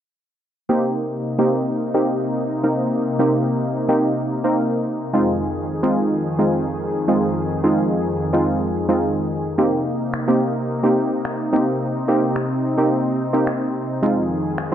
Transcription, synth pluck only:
0.69 1.24 A#3 medium
0.69 1.24 C4 medium
0.69 1.24 D#4 medium
0.69 1.24 G4 loud
1.39 1.82 A#3 medium
1.39 1.82 C4 medium
1.39 1.82 D#4 medium
1.39 1.83 G4 loud
1.94 2.49 A#3 medium
1.94 2.49 C4 medium
1.94 2.49 D#4 medium
1.94 2.49 G4 medium
2.63 3.07 A#3 medium
2.63 3.07 C4 medium
2.63 3.07 D#4 medium
2.63 3.08 A#4 medium
3.19 3.74 A#3 medium
3.19 3.74 C4 medium
3.19 3.74 D#4 medium
3.19 3.74 G4 loud
3.88 4.32 A#3 medium
3.88 4.32 C4 medium
3.88 4.32 D#4 medium
3.88 4.33 G4 loud
4.44 4.99 A#3 medium
4.44 4.99 C4 medium
4.44 4.99 D#4 medium
4.44 4.99 A#4 loud
5.13 5.68 G#3 medium
5.13 5.68 C4 medium
5.13 5.68 D#4 medium
5.13 5.68 F4 loud
5.83 6.27 G#3 medium
5.83 6.27 C4 medium
5.83 6.27 D#4 medium
5.83 6.27 F4 loud
6.39 6.93 G#3 medium
6.39 6.93 C4 medium
6.39 6.93 D#4 medium
6.39 6.93 F4 medium
7.08 7.52 G#3 medium
7.08 7.52 C4 medium
7.08 7.52 D#4 medium
7.08 7.52 F4 medium
7.64 8.18 G#3 medium
7.64 8.18 C4 medium
7.64 8.18 D#4 medium
7.64 8.19 F4 loud
8.33 8.77 G#3 medium
8.33 8.77 C4 medium
8.33 8.77 D#4 medium
8.33 8.77 F4 loud
8.89 9.43 G#3 medium
8.89 9.43 C4 medium
8.89 9.43 D#4 medium
8.89 9.44 F4 loud
9.58 10.13 A#3 medium
9.58 10.13 C4 medium
9.58 10.13 D#4 medium
9.58 10.13 G4 loud
10.28 10.71 A#3 medium
10.28 10.71 C4 medium
10.28 10.71 D#4 medium
10.28 10.72 G4 loud
10.83 11.38 A#3 medium
10.83 11.38 C4 medium
10.83 11.38 D#4 medium
10.83 11.38 G4 loud
11.53 11.96 A#3 medium
11.53 11.96 C4 medium
11.53 11.96 D#4 medium
11.53 11.97 G4 medium
12.08 12.63 A#3 medium
12.08 12.63 C4 medium
12.08 12.63 D#4 medium
12.08 12.63 G4 loud
12.77 13.21 A#3 medium
12.77 13.21 C4 medium
12.77 13.21 D#4 medium
12.77 13.21 G4 loud
13.33 13.88 A#3 medium
13.33 13.88 C4 medium
13.33 13.88 D#4 medium
13.33 13.88 G4 loud
14.02 14.57 G#3 medium
14.02 14.57 C4 medium
14.02 14.57 D#4 medium
14.02 14.57 F4 loud

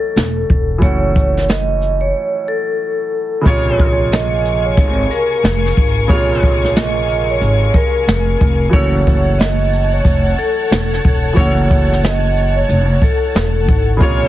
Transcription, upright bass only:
0.16 0.42 E1 medium
0.50 0.82 E1 loud
0.82 2.10 F#1 loud
3.46 4.74 A#1 loud
4.77 5.04 G#1 loud
5.44 5.70 F1 loud
5.77 6.03 G#1 loud
6.09 7.37 A#1 loud
7.41 7.68 G#1 loud
8.07 8.34 F1 loud
8.41 8.67 F1 medium
8.73 10.01 F#1 loud
10.05 10.31 F1 medium
10.71 10.97 E1 medium
11.05 11.31 E1 loud
11.37 12.65 F#1 loud
12.69 12.95 F1 loud
13.35 13.69 E1 loud
13.69 13.95 G#1 medium
14.01 14.28 A#1 loud

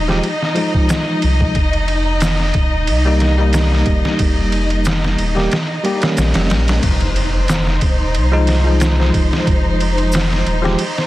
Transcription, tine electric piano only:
0.08 0.27 F3 medium
0.08 0.27 G#3 medium
0.08 0.27 G4 medium
0.54 1.53 F3 medium
0.54 1.54 G#3 medium
0.54 1.55 D#4 medium
3.05 3.34 G3 medium
3.05 3.35 A#3 medium
3.05 3.35 D#4 medium
3.38 5.32 G3 medium
3.38 5.32 A#3 medium
3.38 5.33 D#4 medium
5.35 5.54 G3 medium
5.35 5.55 A#3 medium
5.35 5.55 G4 medium
5.83 5.99 G3 medium
5.83 6.00 A#3 medium
5.83 6.00 G4 medium
6.01 6.81 G3 medium
6.01 6.82 A#3 medium
6.01 6.83 C#4 medium
8.32 8.61 F3 medium
8.32 8.62 G#3 medium
8.32 8.62 D#4 loud
8.64 10.58 F3 medium
8.64 10.59 G#3 medium
8.64 10.60 D#4 medium
10.62 10.81 F3 medium
10.62 10.82 G#3 medium
10.62 10.82 G4 medium

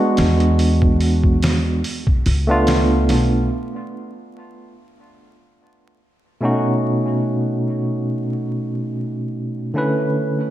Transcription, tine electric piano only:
0.00 1.81 G#3 medium
0.00 1.81 B3 medium
0.00 1.82 D4 medium
0.00 1.83 F#4 medium
2.47 3.48 A3 medium
2.47 3.48 B3 medium
2.47 3.49 D4 medium
2.47 3.49 F4 loud
6.41 9.70 B2 medium
6.41 9.71 A3 medium
6.41 9.71 C#4 medium
6.41 9.72 D#4 medium
6.45 9.72 F#4 medium
9.74 10.50 D3 medium
9.74 10.50 A3 medium
9.74 10.50 C#4 medium
9.74 10.50 E4 medium
9.78 10.50 B4 medium

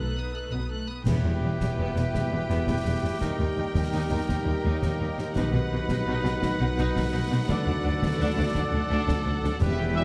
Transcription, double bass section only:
0.00 0.43 B1 soft
0.53 0.98 B1 soft
1.06 1.13 E1 medium
1.25 1.32 E1 soft
1.42 1.50 E1 soft
1.61 1.68 E1 soft
1.80 1.87 E1 medium
1.98 2.04 E1 soft
2.15 2.22 E1 soft
2.32 2.39 E1 soft
2.50 2.57 E1 medium
2.68 2.75 E1 soft
2.85 2.93 E1 soft
3.04 3.12 E1 soft
3.22 3.29 D#2 medium
3.41 3.48 D#2 soft
3.58 3.65 D#2 soft
3.76 3.83 D#2 soft
3.93 4.00 D#2 medium
4.12 4.19 D#2 medium
4.29 4.36 D#2 medium
4.47 4.54 D#2 soft
4.65 4.72 D#2 medium
4.83 4.90 D#2 medium
5.01 5.08 D#2 soft
5.18 5.25 D#2 medium
5.36 5.43 B1 medium
5.54 5.61 B1 medium
5.71 5.78 B1 medium
5.89 5.96 B1 medium
6.07 6.14 B1 medium
6.24 6.31 B1 medium
6.42 6.49 B1 medium
6.60 6.67 B1 medium
6.78 6.85 B1 medium
6.95 7.02 B1 medium
7.13 7.20 B1 medium
7.30 7.37 B1 medium
7.49 7.56 D2 medium
7.68 7.75 D2 medium
7.85 7.92 D2 medium
8.02 8.10 D2 medium
8.19 8.27 D2 medium
8.38 8.45 D2 medium
8.56 8.63 D2 medium
8.73 8.80 D2 medium
8.90 8.97 D2 medium
9.08 9.15 D2 medium
9.26 9.33 D2 medium
9.44 9.51 D2 medium
9.61 10.04 E1 medium

